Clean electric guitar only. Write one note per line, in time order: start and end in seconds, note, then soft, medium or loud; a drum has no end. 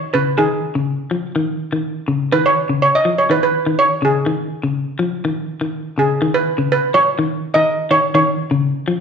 0.14 0.35 C#3 medium
0.39 0.59 D#3 medium
0.75 0.96 C#3 medium
1.11 1.32 F3 medium
1.36 1.56 D#3 medium
1.73 1.93 D#3 medium
2.08 2.29 C#3 medium
2.33 2.53 D#3 medium
2.69 2.90 C#3 medium
3.05 3.26 F3 medium
3.30 3.50 D#3 medium
3.66 3.87 D#3 medium
4.02 4.23 C#3 medium
4.26 4.47 D#3 medium
4.63 4.84 C#3 medium
4.99 5.20 F3 medium
5.25 5.45 D#3 medium
5.61 5.82 D#3 medium
5.98 6.18 C#3 medium
6.22 6.42 D#3 medium
6.58 6.79 C#3 medium
6.95 muted clean electric guitar stroke medium
7.19 7.39 D#3 medium
7.55 7.75 D#3 medium
7.91 8.11 D#3 medium
8.15 8.35 D#3 medium
8.51 8.72 C#3 medium
8.88 9.00 F3 medium